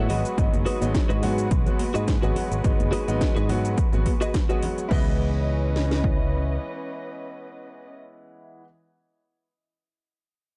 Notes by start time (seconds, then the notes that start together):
Already playing: F#3 G#3 B3 F#4
0.09 G#1 G#3 F#4 G#4 B4 D#5, open hi-hat, low conga, shaker
0.25 closed hi-hat, cabasa, shaker
0.37 G#1 F#3 G#3 B3 D#4, kick, closed hi-hat, cabasa, shaker
0.53 F#1, closed hi-hat, high conga, cabasa
0.65 F#4 G#4 B4 D#5, open hi-hat, shaker
0.81 G#1 F#3 G#3 B3 D#4, closed hi-hat, cabasa, shaker
0.94 muted clean electric guitar stroke, kick, snare, closed hi-hat, cabasa
1.09 G#2 F#4 G#4 B4 D#5, closed hi-hat, cabasa
1.22 F#3 G#3 B3 F#4, open hi-hat, low conga, shaker
1.38 muted clean electric guitar stroke, closed hi-hat, cabasa, shaker
1.51 B1, kick, closed hi-hat, cabasa, shaker
1.66 F#3 G#3 B3 F#4, closed hi-hat, low conga, cabasa
1.79 open hi-hat, high conga, shaker
1.94 G#2 F#4 G#4 B4 D#5, closed hi-hat, cabasa, shaker
2.08 kick, snare, closed hi-hat, cabasa, shaker
2.22 G#1 F#3 G#3 B3 F#4 G#4 B4 D#5, closed hi-hat, cabasa
2.36 open hi-hat, low conga, shaker
2.51 G#1, muted clean electric guitar stroke, closed hi-hat, cabasa, shaker
2.64 G#1 F#3 G#3 B3 D#4, kick, closed hi-hat, cabasa, shaker
2.80 F#1, closed hi-hat, high conga, cabasa
2.92 F#4 G#4 B4 D#5, open hi-hat, shaker
3.08 G#1 F#3 G#3 B3 D#4, closed hi-hat, cabasa, shaker
3.20 muted clean electric guitar stroke, kick, snare, closed hi-hat, cabasa, shaker
3.36 G#2 F#4 G#4 B4 D#5, closed hi-hat, cabasa
3.49 F#3 G#3 B3 F#4, open hi-hat, low conga, shaker
3.64 muted clean electric guitar stroke, closed hi-hat, cabasa, shaker
3.78 kick, closed hi-hat, cabasa, shaker
3.92 G#1 F#3 G#3 B3 F#4, closed hi-hat, low conga, cabasa
4.06 kick, open hi-hat, high conga, shaker
4.21 F#4 G#4 B4 D#5, closed hi-hat, cabasa, shaker
4.34 kick, snare, closed hi-hat, cabasa, shaker
4.49 F#3 G#3 B3 F#4 G#4 B4 D#5, closed hi-hat, cabasa
4.62 open hi-hat, low conga, shaker
4.78 muted clean electric guitar stroke, closed hi-hat, cabasa, shaker
4.89 C#2 E3 G#3 B3 C#4 E4 B4 D#5, kick, crash
4.93 D#5
5.76 snare
5.91 snare
6.04 kick